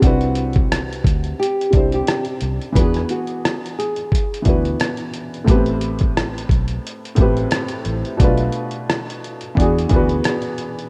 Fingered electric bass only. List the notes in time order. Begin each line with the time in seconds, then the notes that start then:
0.02 C2
1.04 D2
1.73 C2
2.42 C2
2.76 E2
4.46 D2
5.47 A1
6.49 B1
7.18 A1
7.86 A1
8.20 B1
9.57 E2
9.91 D2